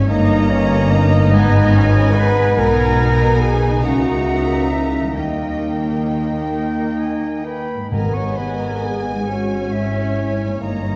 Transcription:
Already playing: G2 A#3 C#4 C#5
0.01 D#4
0.06 G1 G2 A#3 D#4 C#5 D#5 A#5
0.10 A#3 A#5
0.49 C#4 C#5
0.91 D#4 D#5
1.17 G#2
1.21 G#3
1.25 D#4
1.32 G#1 G#2 B3 B4 D#5 G#5
1.74 C#4
2.14 D#4 B4 B5
2.39 B2
2.44 G#3
2.48 D#4
2.55 B1 B2 D#4 A#4 G#5 A#5
3.40 G#4 G#5
3.66 C#3
3.70 A#3
3.75 E4
3.83 C#2 C#3 A#3 F#4 A#4 E5 F#5 A#5
4.71 E4 E5
4.98 D#3
5.03 G3
5.07 D#4
5.11 D#2 D#4 A#4 D#5 G5
5.16 D#3 A#3 D#5 G5
6.05 D#4 D#5
6.53 G5
6.99 G#5
7.44 B4 G5 B5
7.74 G#2
7.79 G#3
7.83 D#4
7.88 G#1 G#2 B3 A#4 B4 D#5 G#5 A#5
7.92 G#5
8.13 C#5 C#6
8.36 B4 B5
8.60 A#4 A#5
8.83 G#4 G#5
9.10 G#2
9.15 G#3
9.19 C#4
9.24 C#4 C#5 F#5
9.28 C#4 F#4 C#5
9.72 E4 E5
10.43 G2
10.48 A#3
10.52 D#4
10.57 C#5
10.61 G1 G2 A#3 D#4 D#5 A#5

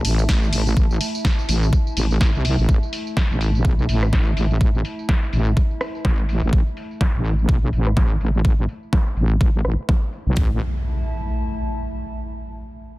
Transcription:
Already playing: A3 E4 E5 A5
0.05 A1, open hi-hat, tambourine
0.19 tambourine
0.29 kick, snare, tambourine
0.43 tambourine
0.53 A1, open hi-hat, tambourine
0.67 tambourine
0.77 kick, tambourine
0.91 tambourine
1.01 open hi-hat, tambourine
1.15 tambourine
1.25 kick, snare, tambourine
1.39 tambourine
1.49 A1, open hi-hat, tambourine
1.63 tambourine
1.73 kick, tambourine
1.87 tambourine
1.97 A1, open hi-hat, tambourine
2.11 tambourine
2.21 kick, snare, tambourine
2.35 C2, tambourine
2.45 open hi-hat, tambourine
2.59 A1, tambourine
2.69 A1, kick, tambourine
2.83 tambourine
2.93 open hi-hat, tambourine
3.07 tambourine
3.17 kick, snare, tambourine
3.31 A1, tambourine
3.41 open hi-hat, tambourine
3.55 tambourine
3.65 B1, kick
3.79 tambourine
3.89 A1, open hi-hat, tambourine
4.03 cross-stick, tambourine
4.13 kick, snare
4.27 tambourine
4.37 A1, open hi-hat, tambourine
4.51 tambourine
4.61 kick, tambourine
4.75 tambourine
4.85 open hi-hat, tambourine
4.99 tambourine
5.09 kick, snare
5.23 tambourine
5.33 A1, open hi-hat, tambourine
5.47 tambourine
5.57 kick, tambourine
5.71 tambourine
5.81 cross-stick, open hi-hat, tambourine
5.95 tambourine
6.05 A1, kick, cross-stick, snare
6.19 tambourine
6.29 open hi-hat, tambourine
6.43 A1, tambourine
6.53 A1, kick, tambourine
6.67 tambourine
6.77 open hi-hat, tambourine
6.91 tambourine
7.01 kick, snare
7.15 A1, tambourine
7.25 open hi-hat, tambourine
7.39 tambourine
7.49 B1, kick
7.63 tambourine
7.73 A1, open hi-hat, tambourine
7.87 cross-stick, tambourine
7.97 kick, snare
8.11 tambourine
8.21 A1, open hi-hat, tambourine
8.35 tambourine
8.45 kick
8.59 tambourine
8.69 open hi-hat, tambourine
8.83 tambourine
8.93 kick, snare
9.07 tambourine
9.17 A1, open hi-hat, tambourine
9.41 A1, kick
9.55 tambourine
9.65 A1, cross-stick, open hi-hat, tambourine
9.79 tambourine
9.89 kick, cross-stick, snare
10.03 tambourine
10.13 open hi-hat, tambourine
10.27 B1, tambourine
10.37 A1 A3, kick, impact
10.45 E4
10.52 E5
10.58 A5

